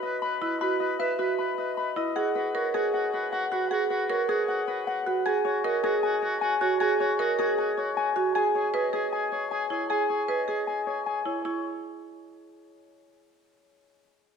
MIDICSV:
0, 0, Header, 1, 4, 480
1, 0, Start_track
1, 0, Key_signature, 4, "major"
1, 0, Tempo, 387097
1, 756, Time_signature, 4, 2, 24, 8
1, 17816, End_track
2, 0, Start_track
2, 0, Title_t, "Harp"
2, 0, Program_c, 0, 46
2, 0, Note_on_c, 0, 71, 80
2, 0, Note_on_c, 0, 73, 57
2, 0, Note_on_c, 0, 76, 62
2, 0, Note_on_c, 0, 83, 64
2, 32, Note_on_c, 0, 75, 62
2, 257, Note_off_c, 0, 83, 0
2, 271, Note_on_c, 0, 83, 81
2, 497, Note_off_c, 0, 75, 0
2, 512, Note_on_c, 0, 75, 64
2, 741, Note_off_c, 0, 83, 0
2, 756, Note_on_c, 0, 83, 83
2, 976, Note_off_c, 0, 75, 0
2, 990, Note_on_c, 0, 75, 62
2, 1216, Note_off_c, 0, 76, 0
2, 1231, Note_on_c, 0, 76, 64
2, 1458, Note_off_c, 0, 71, 0
2, 1473, Note_on_c, 0, 71, 75
2, 1702, Note_off_c, 0, 83, 0
2, 1717, Note_on_c, 0, 83, 68
2, 1942, Note_off_c, 0, 75, 0
2, 1957, Note_on_c, 0, 75, 59
2, 2182, Note_off_c, 0, 83, 0
2, 2197, Note_on_c, 0, 83, 74
2, 2425, Note_off_c, 0, 75, 0
2, 2440, Note_on_c, 0, 75, 65
2, 2676, Note_on_c, 0, 78, 77
2, 2693, Note_off_c, 0, 76, 0
2, 2695, Note_off_c, 0, 73, 0
2, 2901, Note_off_c, 0, 71, 0
2, 2916, Note_on_c, 0, 71, 71
2, 3159, Note_on_c, 0, 73, 60
2, 3400, Note_on_c, 0, 68, 72
2, 3627, Note_off_c, 0, 78, 0
2, 3642, Note_on_c, 0, 78, 67
2, 3870, Note_off_c, 0, 71, 0
2, 3885, Note_on_c, 0, 71, 68
2, 4107, Note_off_c, 0, 78, 0
2, 4122, Note_on_c, 0, 78, 80
2, 4345, Note_off_c, 0, 71, 0
2, 4359, Note_on_c, 0, 71, 64
2, 4583, Note_off_c, 0, 78, 0
2, 4598, Note_on_c, 0, 78, 80
2, 4822, Note_off_c, 0, 71, 0
2, 4837, Note_on_c, 0, 71, 75
2, 5062, Note_off_c, 0, 73, 0
2, 5077, Note_on_c, 0, 73, 67
2, 5298, Note_off_c, 0, 68, 0
2, 5313, Note_on_c, 0, 68, 86
2, 5544, Note_off_c, 0, 78, 0
2, 5559, Note_on_c, 0, 78, 65
2, 5781, Note_off_c, 0, 71, 0
2, 5796, Note_on_c, 0, 71, 70
2, 6025, Note_off_c, 0, 78, 0
2, 6040, Note_on_c, 0, 78, 88
2, 6268, Note_off_c, 0, 71, 0
2, 6283, Note_on_c, 0, 71, 70
2, 6520, Note_on_c, 0, 80, 91
2, 6533, Note_off_c, 0, 68, 0
2, 6536, Note_off_c, 0, 83, 0
2, 6537, Note_off_c, 0, 75, 0
2, 6539, Note_off_c, 0, 71, 0
2, 6738, Note_off_c, 0, 73, 0
2, 6753, Note_on_c, 0, 73, 79
2, 6994, Note_on_c, 0, 75, 68
2, 7234, Note_on_c, 0, 68, 87
2, 7461, Note_off_c, 0, 80, 0
2, 7476, Note_on_c, 0, 80, 72
2, 7699, Note_off_c, 0, 73, 0
2, 7714, Note_on_c, 0, 73, 71
2, 7935, Note_off_c, 0, 80, 0
2, 7950, Note_on_c, 0, 80, 91
2, 8180, Note_off_c, 0, 73, 0
2, 8195, Note_on_c, 0, 73, 70
2, 8426, Note_off_c, 0, 80, 0
2, 8441, Note_on_c, 0, 80, 90
2, 8666, Note_off_c, 0, 73, 0
2, 8681, Note_on_c, 0, 73, 76
2, 8905, Note_off_c, 0, 75, 0
2, 8919, Note_on_c, 0, 75, 74
2, 9148, Note_off_c, 0, 68, 0
2, 9163, Note_on_c, 0, 68, 91
2, 9385, Note_off_c, 0, 80, 0
2, 9400, Note_on_c, 0, 80, 75
2, 9623, Note_off_c, 0, 73, 0
2, 9638, Note_on_c, 0, 73, 74
2, 9866, Note_off_c, 0, 80, 0
2, 9881, Note_on_c, 0, 80, 86
2, 10104, Note_off_c, 0, 73, 0
2, 10119, Note_on_c, 0, 73, 69
2, 10344, Note_off_c, 0, 80, 0
2, 10359, Note_on_c, 0, 80, 88
2, 10377, Note_off_c, 0, 73, 0
2, 10377, Note_off_c, 0, 78, 0
2, 10602, Note_on_c, 0, 73, 72
2, 10826, Note_off_c, 0, 75, 0
2, 10840, Note_on_c, 0, 75, 66
2, 11060, Note_off_c, 0, 68, 0
2, 11075, Note_on_c, 0, 68, 79
2, 11299, Note_off_c, 0, 80, 0
2, 11314, Note_on_c, 0, 80, 65
2, 11540, Note_off_c, 0, 73, 0
2, 11555, Note_on_c, 0, 73, 64
2, 11778, Note_off_c, 0, 80, 0
2, 11793, Note_on_c, 0, 80, 81
2, 12021, Note_off_c, 0, 73, 0
2, 12035, Note_on_c, 0, 73, 57
2, 12263, Note_off_c, 0, 80, 0
2, 12278, Note_on_c, 0, 80, 73
2, 12504, Note_off_c, 0, 73, 0
2, 12519, Note_on_c, 0, 73, 58
2, 12742, Note_off_c, 0, 75, 0
2, 12757, Note_on_c, 0, 75, 60
2, 12982, Note_off_c, 0, 68, 0
2, 12997, Note_on_c, 0, 68, 66
2, 13218, Note_off_c, 0, 80, 0
2, 13232, Note_on_c, 0, 80, 55
2, 13458, Note_off_c, 0, 73, 0
2, 13473, Note_on_c, 0, 73, 58
2, 13702, Note_off_c, 0, 80, 0
2, 13717, Note_on_c, 0, 80, 72
2, 13942, Note_off_c, 0, 73, 0
2, 13957, Note_on_c, 0, 73, 51
2, 14183, Note_off_c, 0, 73, 0
2, 14198, Note_on_c, 0, 73, 68
2, 14420, Note_off_c, 0, 73, 0
2, 16135, Note_off_c, 0, 68, 0
2, 16135, Note_off_c, 0, 80, 0
2, 16136, Note_off_c, 0, 75, 0
2, 17816, End_track
3, 0, Start_track
3, 0, Title_t, "Marimba"
3, 0, Program_c, 1, 12
3, 516, Note_on_c, 1, 64, 68
3, 757, Note_on_c, 1, 66, 71
3, 828, Note_off_c, 1, 64, 0
3, 1068, Note_off_c, 1, 66, 0
3, 1237, Note_on_c, 1, 71, 72
3, 1475, Note_on_c, 1, 66, 65
3, 1548, Note_off_c, 1, 71, 0
3, 1788, Note_off_c, 1, 66, 0
3, 2435, Note_on_c, 1, 64, 64
3, 2677, Note_on_c, 1, 68, 73
3, 2748, Note_off_c, 1, 64, 0
3, 2988, Note_off_c, 1, 68, 0
3, 3160, Note_on_c, 1, 70, 76
3, 3401, Note_on_c, 1, 68, 64
3, 3469, Note_off_c, 1, 70, 0
3, 3710, Note_off_c, 1, 68, 0
3, 4362, Note_on_c, 1, 66, 64
3, 4599, Note_on_c, 1, 68, 78
3, 4670, Note_off_c, 1, 66, 0
3, 4909, Note_off_c, 1, 68, 0
3, 5079, Note_on_c, 1, 70, 87
3, 5319, Note_on_c, 1, 68, 68
3, 5389, Note_off_c, 1, 70, 0
3, 5629, Note_off_c, 1, 68, 0
3, 6280, Note_on_c, 1, 66, 69
3, 6519, Note_on_c, 1, 68, 84
3, 6589, Note_off_c, 1, 66, 0
3, 6829, Note_off_c, 1, 68, 0
3, 6999, Note_on_c, 1, 70, 86
3, 7240, Note_on_c, 1, 68, 71
3, 7309, Note_off_c, 1, 70, 0
3, 7549, Note_off_c, 1, 68, 0
3, 8198, Note_on_c, 1, 66, 76
3, 8436, Note_on_c, 1, 68, 86
3, 8509, Note_off_c, 1, 66, 0
3, 8748, Note_off_c, 1, 68, 0
3, 8918, Note_on_c, 1, 70, 89
3, 9160, Note_on_c, 1, 68, 75
3, 9228, Note_off_c, 1, 70, 0
3, 9469, Note_off_c, 1, 68, 0
3, 10117, Note_on_c, 1, 66, 71
3, 10357, Note_on_c, 1, 68, 77
3, 10428, Note_off_c, 1, 66, 0
3, 10668, Note_off_c, 1, 68, 0
3, 10834, Note_on_c, 1, 71, 86
3, 11074, Note_on_c, 1, 68, 65
3, 11147, Note_off_c, 1, 71, 0
3, 11387, Note_off_c, 1, 68, 0
3, 12032, Note_on_c, 1, 64, 57
3, 12275, Note_on_c, 1, 68, 72
3, 12347, Note_off_c, 1, 64, 0
3, 12587, Note_off_c, 1, 68, 0
3, 12753, Note_on_c, 1, 71, 72
3, 12992, Note_on_c, 1, 68, 53
3, 13067, Note_off_c, 1, 71, 0
3, 13306, Note_off_c, 1, 68, 0
3, 13956, Note_on_c, 1, 64, 58
3, 14184, Note_off_c, 1, 64, 0
3, 14199, Note_on_c, 1, 64, 64
3, 14421, Note_off_c, 1, 64, 0
3, 17816, End_track
4, 0, Start_track
4, 0, Title_t, "Oboe"
4, 0, Program_c, 2, 68
4, 44, Note_on_c, 2, 71, 65
4, 209, Note_off_c, 2, 71, 0
4, 279, Note_on_c, 2, 71, 70
4, 446, Note_off_c, 2, 71, 0
4, 516, Note_on_c, 2, 71, 70
4, 684, Note_off_c, 2, 71, 0
4, 756, Note_on_c, 2, 71, 72
4, 924, Note_off_c, 2, 71, 0
4, 1000, Note_on_c, 2, 71, 72
4, 1166, Note_off_c, 2, 71, 0
4, 1240, Note_on_c, 2, 71, 67
4, 1407, Note_off_c, 2, 71, 0
4, 1483, Note_on_c, 2, 71, 60
4, 1648, Note_off_c, 2, 71, 0
4, 1721, Note_on_c, 2, 71, 50
4, 1887, Note_off_c, 2, 71, 0
4, 1965, Note_on_c, 2, 71, 46
4, 2130, Note_off_c, 2, 71, 0
4, 2202, Note_on_c, 2, 71, 38
4, 2368, Note_off_c, 2, 71, 0
4, 2681, Note_on_c, 2, 66, 35
4, 2847, Note_off_c, 2, 66, 0
4, 2921, Note_on_c, 2, 66, 44
4, 3087, Note_off_c, 2, 66, 0
4, 3161, Note_on_c, 2, 66, 56
4, 3327, Note_off_c, 2, 66, 0
4, 3398, Note_on_c, 2, 66, 66
4, 3565, Note_off_c, 2, 66, 0
4, 3638, Note_on_c, 2, 66, 64
4, 3805, Note_off_c, 2, 66, 0
4, 3883, Note_on_c, 2, 66, 67
4, 4049, Note_off_c, 2, 66, 0
4, 4117, Note_on_c, 2, 66, 78
4, 4285, Note_off_c, 2, 66, 0
4, 4365, Note_on_c, 2, 66, 69
4, 4530, Note_off_c, 2, 66, 0
4, 4598, Note_on_c, 2, 66, 83
4, 4765, Note_off_c, 2, 66, 0
4, 4840, Note_on_c, 2, 66, 78
4, 5006, Note_off_c, 2, 66, 0
4, 5082, Note_on_c, 2, 66, 68
4, 5248, Note_off_c, 2, 66, 0
4, 5324, Note_on_c, 2, 66, 64
4, 5489, Note_off_c, 2, 66, 0
4, 5563, Note_on_c, 2, 66, 58
4, 5728, Note_off_c, 2, 66, 0
4, 5806, Note_on_c, 2, 66, 46
4, 5970, Note_off_c, 2, 66, 0
4, 6048, Note_on_c, 2, 66, 39
4, 6212, Note_off_c, 2, 66, 0
4, 6525, Note_on_c, 2, 66, 37
4, 6690, Note_off_c, 2, 66, 0
4, 6765, Note_on_c, 2, 66, 49
4, 6930, Note_off_c, 2, 66, 0
4, 7005, Note_on_c, 2, 66, 64
4, 7170, Note_off_c, 2, 66, 0
4, 7245, Note_on_c, 2, 66, 72
4, 7410, Note_off_c, 2, 66, 0
4, 7485, Note_on_c, 2, 66, 79
4, 7650, Note_off_c, 2, 66, 0
4, 7717, Note_on_c, 2, 66, 77
4, 7885, Note_off_c, 2, 66, 0
4, 7958, Note_on_c, 2, 66, 87
4, 8126, Note_off_c, 2, 66, 0
4, 8192, Note_on_c, 2, 66, 88
4, 8361, Note_off_c, 2, 66, 0
4, 8434, Note_on_c, 2, 66, 86
4, 8603, Note_off_c, 2, 66, 0
4, 8674, Note_on_c, 2, 66, 80
4, 8843, Note_off_c, 2, 66, 0
4, 8921, Note_on_c, 2, 66, 78
4, 9087, Note_off_c, 2, 66, 0
4, 9163, Note_on_c, 2, 66, 73
4, 9328, Note_off_c, 2, 66, 0
4, 9402, Note_on_c, 2, 66, 58
4, 9568, Note_off_c, 2, 66, 0
4, 9638, Note_on_c, 2, 66, 52
4, 9805, Note_off_c, 2, 66, 0
4, 9880, Note_on_c, 2, 66, 41
4, 10046, Note_off_c, 2, 66, 0
4, 10359, Note_on_c, 2, 68, 40
4, 10526, Note_off_c, 2, 68, 0
4, 10601, Note_on_c, 2, 68, 50
4, 10768, Note_off_c, 2, 68, 0
4, 10839, Note_on_c, 2, 68, 57
4, 11006, Note_off_c, 2, 68, 0
4, 11077, Note_on_c, 2, 68, 64
4, 11244, Note_off_c, 2, 68, 0
4, 11313, Note_on_c, 2, 68, 65
4, 11482, Note_off_c, 2, 68, 0
4, 11553, Note_on_c, 2, 68, 64
4, 11722, Note_off_c, 2, 68, 0
4, 11798, Note_on_c, 2, 68, 76
4, 11965, Note_off_c, 2, 68, 0
4, 12036, Note_on_c, 2, 68, 65
4, 12204, Note_off_c, 2, 68, 0
4, 12275, Note_on_c, 2, 68, 69
4, 12443, Note_off_c, 2, 68, 0
4, 12509, Note_on_c, 2, 68, 63
4, 12680, Note_off_c, 2, 68, 0
4, 12755, Note_on_c, 2, 68, 60
4, 12924, Note_off_c, 2, 68, 0
4, 12995, Note_on_c, 2, 68, 57
4, 13163, Note_off_c, 2, 68, 0
4, 13232, Note_on_c, 2, 68, 49
4, 13402, Note_off_c, 2, 68, 0
4, 13475, Note_on_c, 2, 68, 39
4, 13643, Note_off_c, 2, 68, 0
4, 13715, Note_on_c, 2, 68, 33
4, 13884, Note_off_c, 2, 68, 0
4, 17816, End_track
0, 0, End_of_file